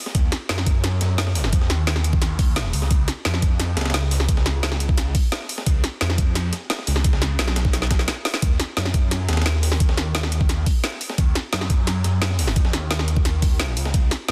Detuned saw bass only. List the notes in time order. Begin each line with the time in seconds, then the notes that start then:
0.15 D#2
0.49 F#2
1.01 F#2
1.53 F2
1.70 D#2
2.22 D#2
2.73 C#2
2.91 C#2
3.25 F2
3.77 C#2
5.67 C#2
6.01 F2
6.87 C#2
7.04 C#2
7.22 C#2
7.39 B1
8.42 D#2
8.77 F#2
9.29 D#2
11.18 D#2
11.53 F#2
12.04 F#2
12.56 F2
12.73 D#2
13.25 D#2
13.77 C#2
13.94 C#2
14.29 F2